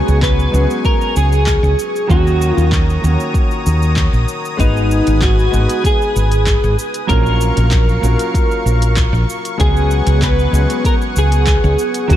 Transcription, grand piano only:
0.00 0.49 F#3 medium
0.00 0.49 G#3 medium
0.00 0.50 B3 medium
0.00 0.50 C#4 medium
0.00 0.50 G#4 medium
0.51 2.05 F#3 medium
0.51 2.05 G#3 medium
0.51 2.05 B3 medium
0.51 2.06 C#4 medium
0.51 2.06 G#4 medium
2.07 2.99 D#3 medium
2.07 2.99 F#3 medium
2.07 3.00 A#3 medium
2.07 3.00 C#4 medium
2.07 3.00 F#4 medium
3.02 4.55 D#3 medium
3.02 4.56 F#3 medium
3.02 4.56 A#3 medium
3.02 4.56 C#4 medium
3.02 4.57 F#4 medium
4.57 5.48 G#3 medium
4.57 5.49 B3 medium
4.57 5.49 D#4 medium
4.57 5.49 F#4 medium
4.57 5.50 B4 medium
5.51 7.05 G#3 medium
5.51 7.05 B3 medium
5.51 7.06 D#4 medium
5.51 7.06 F#4 medium
5.51 7.06 B4 medium
7.07 7.99 F#3 medium
7.07 7.99 A#3 medium
7.07 7.99 C#4 medium
7.07 8.00 F4 medium
7.07 8.00 A#4 loud
8.01 9.55 F#3 medium
8.01 9.55 A#3 medium
8.01 9.56 C#4 medium
8.01 9.56 F4 medium
8.01 9.57 A#4 medium
9.58 10.49 F#3 medium
9.58 10.49 G#3 medium
9.58 10.50 B3 medium
9.58 10.50 C#4 medium
9.58 10.50 G#4 loud
10.51 12.05 F#3 medium
10.51 12.05 G#3 medium
10.51 12.05 B3 medium
10.51 12.06 C#4 medium
10.51 12.06 G#4 medium
12.08 12.17 D#3 medium
12.08 12.17 F#3 medium
12.08 12.17 A#3 medium
12.08 12.17 C#4 medium
12.08 12.17 F#4 medium

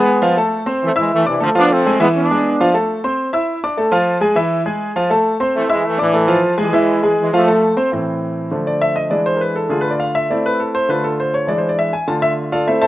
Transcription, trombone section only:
0.00 0.34 G#3 medium
0.00 0.34 B3 loud
0.83 0.89 E3 medium
0.83 0.90 A3 medium
0.98 1.11 E3 medium
0.98 1.11 G#3 loud
1.13 1.26 E3 medium
1.13 1.27 A3 loud
1.27 1.40 C3 medium
1.27 1.40 E3 medium
1.42 1.48 D3 medium
1.42 1.48 F3 loud
1.56 1.70 B3 loud
1.56 1.70 D4 loud
1.71 2.00 A3 medium
1.71 2.00 C4 loud
2.00 2.07 G#3 medium
2.00 2.07 B3 loud
2.14 2.70 B3 medium
2.14 2.70 D4 loud
5.55 5.70 E3 medium
5.55 5.69 A3 loud
5.70 5.85 E3 medium
5.70 5.85 G#3 loud
5.85 5.99 E3 medium
5.85 6.00 A3 loud
6.00 6.42 A2 medium
6.00 6.41 E3 loud
6.60 7.15 E3 medium
6.60 7.15 G#3 medium
7.20 7.33 E3 medium
7.20 7.33 G#3 medium
7.34 7.75 F3 medium
7.34 7.75 A3 loud

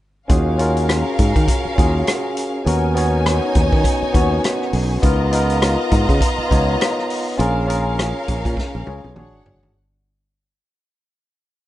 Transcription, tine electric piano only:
0.28 0.56 C#4 medium
0.28 0.57 F4 medium
0.28 0.58 F#4 medium
0.28 0.58 G#4 medium
0.57 1.68 C#4 medium
0.57 1.68 F4 medium
0.57 1.69 F#4 medium
0.57 1.70 A#4 medium
1.76 2.59 C#4 medium
1.76 2.59 F4 medium
1.76 2.60 F#4 medium
1.76 2.60 G#4 medium
2.65 2.93 B3 medium
2.65 2.93 C#4 medium
2.65 2.94 F#4 medium
2.65 2.95 A#4 medium
2.94 4.05 B3 medium
2.94 4.05 C#4 medium
2.94 4.06 F#4 medium
2.94 4.06 C#5 medium
4.13 4.96 B3 medium
4.13 4.96 C#4 medium
4.13 4.97 F#4 medium
4.13 4.97 C#5 medium
5.02 5.30 B3 medium
5.02 5.30 D#4 medium
5.02 5.31 F4 medium
5.02 5.31 A#4 medium
5.31 6.41 B3 medium
5.31 6.42 D#4 medium
5.31 6.42 F4 medium
5.31 6.43 A#4 medium
6.48 7.32 B3 medium
6.48 7.32 D#4 medium
6.48 7.33 F4 medium
6.48 7.33 C#5 medium
7.37 7.66 C#4 medium
7.37 7.66 F4 medium
7.37 7.67 G#4 medium
7.37 7.67 A#4 medium
7.67 8.77 C#4 medium
7.67 8.78 F4 medium
7.67 8.78 G#4 medium
7.67 8.79 A#4 medium
8.86 9.16 C#4 medium
8.86 9.17 F4 medium
8.86 9.16 G#4 medium
8.86 9.18 C#5 medium
9.15 9.71 D4 medium
9.15 9.71 F#4 medium
9.15 9.72 G#4 medium
9.15 9.72 C#5 medium

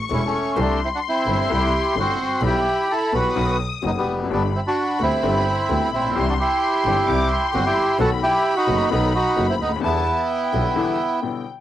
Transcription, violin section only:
0.00 0.52 C#6 medium
0.57 2.42 C6 medium
2.41 3.35 B5 medium
3.35 4.05 D#6 medium
4.27 6.10 B5 medium
6.15 7.07 C6 medium
7.06 7.29 D6 medium
7.30 7.99 C6 medium
7.99 9.84 B5 loud
9.83 10.27 A5 medium
10.30 11.47 G5 medium

